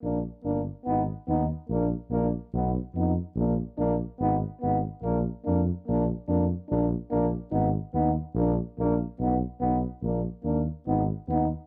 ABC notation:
X:1
M:2/4
L:1/8
Q:1/4=144
K:none
V:1 name="French horn"
D2 D2 | _E2 E2 | D2 D2 | ^D2 D2 |
D2 D2 | _E2 E2 | D2 D2 | D2 D2 |
D2 D2 | _E2 E2 | D2 D2 | ^D2 D2 |
D2 D2 | _E2 E2 |]
V:2 name="Trombone"
_B,2 B,2 | _C2 C2 | _B,2 B,2 | B,2 B,2 |
_B,2 B,2 | _C2 C2 | _B,2 B,2 | _B,2 B,2 |
_B,2 B,2 | _C2 C2 | _B,2 B,2 | B,2 B,2 |
_B,2 B,2 | _C2 C2 |]
V:3 name="Tuba" clef=bass
_B,,,2 G,,,2 | _A,,,2 _E,,2 | _B,,,2 B,,,2 | B,,,2 F,,2 |
_B,,,2 B,,,2 | _A,,,2 A,,,2 | _B,,,2 F,,2 | _B,,,2 F,,2 |
_B,,,2 B,,,2 | _A,,,2 _E,,2 | _B,,,2 B,,,2 | B,,,2 B,,,2 |
_B,,,2 _E,,2 | _A,,,2 _E,,2 |]